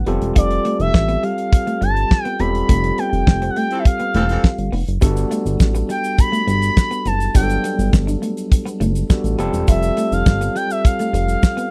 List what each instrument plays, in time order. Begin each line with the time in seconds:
0.06 analog synth bass F1, tine electric piano G3 C4 F4 G4 A4, clean electric guitar B3, closed hi-hat
0.21 analog synth bass E1, closed hi-hat
0.36 analog synth bass F1, clean electric guitar F4, analog synth lead D5, kick, closed hi-hat
0.50 muted clean electric guitar stroke, closed hi-hat
0.65 clean electric guitar A3, closed hi-hat
0.79 analog synth bass F1, analog synth lead E5, closed hi-hat
0.94 analog synth bass A1, muted clean electric guitar stroke, kick, snare
1.08 clean electric guitar B3, closed hi-hat
1.23 clean electric guitar G3, analog synth lead F5, closed hi-hat
1.38 closed hi-hat
1.53 muted clean electric guitar stroke, kick, closed hi-hat
1.67 clean electric guitar A3, closed hi-hat
1.81 analog synth bass G1, clean electric guitar G3, analog synth lead A5, closed hi-hat
1.97 closed hi-hat
2.11 muted clean electric guitar stroke, kick, snare
2.24 clean electric guitar B3, analog synth lead G5, closed hi-hat
2.39 analog synth bass E1, tine electric piano G3 C4 F4 G4 A4, clean electric guitar B3, analog synth lead B5, closed hi-hat
2.55 closed hi-hat
2.69 analog synth bass F1, clean electric guitar A3, kick, closed hi-hat
2.84 muted clean electric guitar stroke, closed hi-hat
2.98 clean electric guitar B3, analog synth lead G5, closed hi-hat
3.13 analog synth bass F1, closed hi-hat
3.27 analog synth bass F1, muted clean electric guitar stroke, kick, snare
3.42 clean electric guitar C4, closed hi-hat
3.50 analog synth lead F#5
3.56 clean electric guitar A3, analog synth lead G5, closed hi-hat
3.71 horn section E3 C4 A4, closed hi-hat
3.79 analog synth lead E5
3.85 analog synth lead F5, muted clean electric guitar stroke, kick, closed hi-hat
4.00 clean electric guitar B3, closed hi-hat
4.14 analog synth bass E1, horn section E3 C4 A4, clean electric guitar A3, closed hi-hat
4.29 horn section E3 C4 A4, closed hi-hat
4.44 kick, snare
4.58 analog synth bass G1, closed hi-hat
4.72 analog synth bass F1, clean electric guitar B3, open hi-hat
4.87 analog synth bass F#1, closed hi-hat
5.01 analog synth bass G1, tine electric piano G3 B3 D4 F#4 A4, clean electric guitar G3, kick, closed hi-hat, shaker
5.16 muted clean electric guitar stroke, closed hi-hat, shaker
5.31 clean electric guitar A3, closed hi-hat, shaker
5.45 analog synth bass G1, closed hi-hat, shaker
5.60 analog synth bass A1, muted clean electric guitar stroke, kick, snare, shaker
5.75 clean electric guitar B3, closed hi-hat, shaker
5.89 clean electric guitar G3, analog synth lead G5, closed hi-hat, shaker
6.04 closed hi-hat, shaker
6.19 analog synth lead B5, muted clean electric guitar stroke, kick, closed hi-hat, shaker
6.32 clean electric guitar A3, closed hi-hat, shaker
6.47 analog synth bass G1, clean electric guitar G3, analog synth lead B5, closed hi-hat, shaker
6.62 closed hi-hat, shaker
6.77 muted clean electric guitar stroke, kick, snare, shaker
6.91 clean electric guitar B3, closed hi-hat, shaker
7.05 analog synth bass F#1, clean electric guitar B3, analog synth lead A5, closed hi-hat, shaker
7.20 closed hi-hat, shaker
7.34 analog synth bass G1, tine electric piano F#3 G3 B3 D4 G4, clean electric guitar G3, analog synth lead G5, kick, closed hi-hat, shaker
7.43 tine electric piano A4
7.49 muted clean electric guitar stroke, closed hi-hat, shaker
7.64 clean electric guitar B3, closed hi-hat, shaker
7.79 analog synth bass G1, closed hi-hat, shaker
7.93 analog synth bass G1, muted clean electric guitar stroke, kick, snare, shaker
8.07 clean electric guitar D4, closed hi-hat, shaker
8.22 clean electric guitar A3, closed hi-hat, shaker
8.37 closed hi-hat, shaker
8.51 muted clean electric guitar stroke, kick, closed hi-hat, shaker
8.66 clean electric guitar B3, closed hi-hat, shaker
8.80 analog synth bass F#1, clean electric guitar A3, closed hi-hat, shaker
8.95 closed hi-hat, shaker
9.10 tine electric piano G3 B3 D4 F#4 A4, kick, snare, shaker
9.24 analog synth bass A1, closed hi-hat, shaker
9.38 analog synth bass F1, tine electric piano G3 C4 F4 G4 A4, clean electric guitar B3, closed hi-hat, shaker
9.53 analog synth bass E1, closed hi-hat, shaker
9.68 analog synth bass F1, clean electric guitar F4, analog synth lead E5, kick, closed hi-hat, shaker
9.83 muted clean electric guitar stroke, closed hi-hat, shaker
9.97 clean electric guitar A3, closed hi-hat, shaker
10.12 analog synth bass F1, analog synth lead F5, closed hi-hat, shaker
10.26 analog synth bass G1, muted clean electric guitar stroke, kick, snare, shaker
10.41 clean electric guitar B3, closed hi-hat, shaker
10.55 clean electric guitar G3, analog synth lead G5, closed hi-hat, shaker
10.70 analog synth lead E5, closed hi-hat, shaker
10.84 analog synth lead F5, muted clean electric guitar stroke, kick, closed hi-hat, shaker
10.99 clean electric guitar A3, closed hi-hat, shaker
11.13 analog synth bass F1, clean electric guitar G3, closed hi-hat, shaker
11.28 closed hi-hat, shaker
11.43 muted clean electric guitar stroke, kick, snare, shaker
11.57 clean electric guitar B3, closed hi-hat, shaker